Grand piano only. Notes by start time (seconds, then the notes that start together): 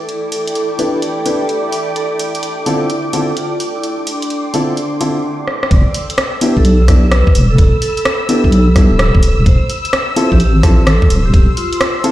0.79 D4 E4 G4 B4
1.26 D4 E4 G4 B4
2.66 D3 C4 E4 F4 A4
3.13 D3 C4 E4 F4 A4
4.54 D3 C4 E4 F4 A4
5.01 D3 C4 E4 F4 A4
6.41 B3 D4 E4 G4
6.88 B3 D4 E4 G4
8.29 B3 D4 E4 G4
8.76 B3 D4 E4 G4
10.16 C4 E4 F4 A4
10.63 C4 E4 F4 A4
12.04 C4 E4 F4 A4